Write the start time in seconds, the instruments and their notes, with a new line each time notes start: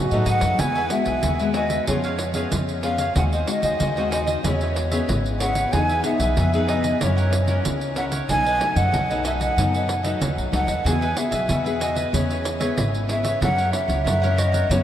Already playing: nylon-string guitar F#2, trombone F#4
0.11 upright bass A2, nylon-string guitar F#3 A3 D#4, cavaquinho A4 B4 D#5, pandeiro
0.26 upright bass G#2, cavaquinho D#4 A4 B4 D#5, flute F#5, pandeiro
0.41 upright bass F#2, cavaquinho A4 B4 D#5, pandeiro
0.59 upright bass E2, nylon-string guitar E3 G#3 B3 F#4, cavaquinho F#4 G#4 B4 E5, flute G#5, pandeiro
0.75 cavaquinho G#4 B4 E5, pandeiro
0.90 nylon-string guitar G#3 B3 F#4, flute E5, muted cavaquinho stroke, pandeiro
1.05 upright bass B1, cavaquinho G#4 B4 E5, pandeiro
1.23 upright bass D#2, nylon-string guitar B2, cavaquinho F#4 G#4 B4 E5, pandeiro
1.39 nylon-string guitar G#3 B3 F#4, cavaquinho G#4 B4 E5, pandeiro
1.54 cavaquinho F#4 G#4 B4 E5, flute D#5, pandeiro
1.70 cavaquinho G#4 B4 E5, pandeiro
1.87 upright bass F2, nylon-string guitar F3 B3 C#4 G#4, cavaquinho F4 B4 C#5 F5, flute C#5, pandeiro
2.04 cavaquinho B4 C#5 F5, pandeiro
2.19 muted cavaquinho stroke, pandeiro
2.34 nylon-string guitar B3 C#4 G#4, cavaquinho B4 C#5 F5, pandeiro
2.52 upright bass F2, nylon-string guitar F3, pandeiro
2.69 pandeiro
2.83 nylon-string guitar B3 C#4 G#4, cavaquinho F4 B4 C#5 F5, flute F5, pandeiro
2.98 cavaquinho B4 C#5 F5, pandeiro
3.15 upright bass D#2, nylon-string guitar D#3 G#3 C4 F#4, cavaquinho F#4 G#4 C5 D#5, flute F#5, pandeiro
3.33 cavaquinho G#4 C5 D#5, pandeiro
3.47 nylon-string guitar G#3 C4 F#4, flute D#5, muted cavaquinho stroke, pandeiro
3.62 upright bass D#2, cavaquinho G#4 C5 D#5, pandeiro
3.80 upright bass D#2, nylon-string guitar D#3, cavaquinho F#4 G#4 C5 D#5, pandeiro
3.96 nylon-string guitar G#3 C4 F#4, cavaquinho G#4 C5 D#5, pandeiro
4.11 cavaquinho F#4 G#4 C5 D#5, flute D#5, pandeiro
4.27 cavaquinho G#4 C5 D#5, pandeiro
4.44 upright bass E2, nylon-string guitar E3 B3 C#4 G#4, cavaquinho E4 B4 C#5 E5, flute C#5, pandeiro
4.61 cavaquinho B4 C#5 E5, pandeiro
4.76 muted cavaquinho stroke, pandeiro
4.91 nylon-string guitar B3 C#4 G#4, cavaquinho B4 C#5 E5, pandeiro
5.08 upright bass G#1, nylon-string guitar E3, pandeiro
5.26 pandeiro
5.40 nylon-string guitar B3 C#4 G#4, cavaquinho E4 B4 C#5 E5, flute F#5, pandeiro
5.55 cavaquinho B4 C#5 E5, pandeiro
5.72 upright bass E2, nylon-string guitar E3 B3 D#4 G#4, cavaquinho D#4 G#4 B4 E5, flute G#5, pandeiro
5.89 cavaquinho G#4 B4 E5, pandeiro
6.04 nylon-string guitar B3 D#4 G#4, flute E5, muted cavaquinho stroke, pandeiro
6.19 upright bass B1, cavaquinho G#4 B4 E5, pandeiro
6.37 upright bass F2, nylon-string guitar B2, cavaquinho D#4 G#4 B4 E5, pandeiro
6.53 nylon-string guitar B3 D#4 G#4, cavaquinho G#4 B4 E5, pandeiro
6.68 cavaquinho D#4 G#4 B4 E5, flute D#5, pandeiro
6.83 cavaquinho G#4 B4 E5, pandeiro
7.00 nylon-string guitar F#2 E3 A#3 C#4, upright bass F#2, cavaquinho E4 A#4 C#5 F#5, flute C#5, pandeiro
7.17 cavaquinho A#4 C#5 F#5, pandeiro
7.32 muted cavaquinho stroke, pandeiro
7.47 nylon-string guitar E3 A#3 C#4, cavaquinho A#4 C#5 F#5, pandeiro
7.65 upright bass C#2, nylon-string guitar C#3, pandeiro
7.81 pandeiro
7.96 nylon-string guitar E3 A#3 C#4, cavaquinho E4 A#4 C#5 F#5, flute F#5, pandeiro
8.11 cavaquinho A#4 C#5 F#5, pandeiro
8.29 upright bass B1, nylon-string guitar B2 F#3 A3 D#4, cavaquinho D#4 A4 B4 D#5, flute G#5, pandeiro
8.45 cavaquinho A4 B4 D#5, pandeiro
8.61 nylon-string guitar F#3 A3 D#4, muted cavaquinho stroke, pandeiro
8.76 upright bass F#2, cavaquinho A4 B4 D#5, flute F#5, pandeiro
8.92 upright bass B1, nylon-string guitar F#2, cavaquinho D#4 A4 B4 D#5, pandeiro
9.10 nylon-string guitar F#3 A3 D#4, cavaquinho A4 B4 D#5, pandeiro
9.25 cavaquinho D#4 A4 B4 D#5, flute E5, pandeiro
9.40 cavaquinho A4 B4 D#5, flute F#5, pandeiro
9.57 upright bass F#2, nylon-string guitar B2 F#3 A3 D#4, cavaquinho D#4 A4 B4 D#5, pandeiro
9.74 cavaquinho A4 B4 D#5, pandeiro
9.89 muted cavaquinho stroke, pandeiro
10.03 nylon-string guitar F#3 A3 D#4, cavaquinho A4 B4 D#5, pandeiro
10.21 upright bass D#2, nylon-string guitar F#2, pandeiro
10.37 upright bass B1, pandeiro
10.52 upright bass C#2, nylon-string guitar F#3 A3 D#4, cavaquinho D#4 A4 B4 D#5, flute F#5, pandeiro
10.67 upright bass D#2, cavaquinho A4 B4 D#5, pandeiro
10.84 upright bass E2, nylon-string guitar E3 B3 F#4 G#4, cavaquinho F#4 G#4 B4 E5, flute G#5, pandeiro
11.01 cavaquinho G#4 B4 E5, pandeiro
11.16 nylon-string guitar B3 F#4 G#4, flute E5, muted cavaquinho stroke, pandeiro
11.31 upright bass B1, cavaquinho G#4 B4 E5, pandeiro
11.48 upright bass E2, nylon-string guitar B2, cavaquinho F#4 G#4 B4 E5, pandeiro
11.64 nylon-string guitar B3 F#4 G#4, cavaquinho G#4 B4 E5, pandeiro
11.80 cavaquinho F#4 G#4 B4 E5, flute D#5, pandeiro
11.96 cavaquinho G#4 B4 E5, pandeiro
12.13 upright bass E2, nylon-string guitar E3 B3 C#4 G#4, cavaquinho E4 B4 C#5 E5, flute C#5, pandeiro
12.30 cavaquinho B4 C#5 E5, pandeiro
12.45 muted cavaquinho stroke, pandeiro
12.60 nylon-string guitar B3 C#4 G#4, cavaquinho B4 C#5 E5, pandeiro
12.77 upright bass G#1, nylon-string guitar E3, pandeiro
12.94 pandeiro
13.09 nylon-string guitar B3 C#4 G#4, cavaquinho E4 B4 C#5 E5, flute E5, pandeiro
13.24 cavaquinho B4 C#5 E5, pandeiro
13.41 upright bass F#2, nylon-string guitar F#2 E3 A#3 C#4, cavaquinho E4 A#4 C#5 F#5, flute F#5, pandeiro
13.57 cavaquinho A#4 C#5 F#5, pandeiro
13.73 nylon-string guitar E3 A#3 C#4, flute E5, muted cavaquinho stroke, pandeiro
13.88 upright bass C#2, cavaquinho A#4 C#5 F#5, pandeiro
14.04 upright bass F#2, nylon-string guitar C#3, cavaquinho E4 A#4 C#5 F#5, pandeiro
14.22 nylon-string guitar E3 A#3 C#4, cavaquinho A#4 C#5 F#5, pandeiro
14.36 cavaquinho E4 A#4 C#5 F#5, flute D#5, pandeiro
14.52 cavaquinho A#4 C#5 F#5, pandeiro
14.69 upright bass F#2, nylon-string guitar F#2 F#3 B3 C#4, cavaquinho F#4 B4 C#5 F#5, flute C#5, pandeiro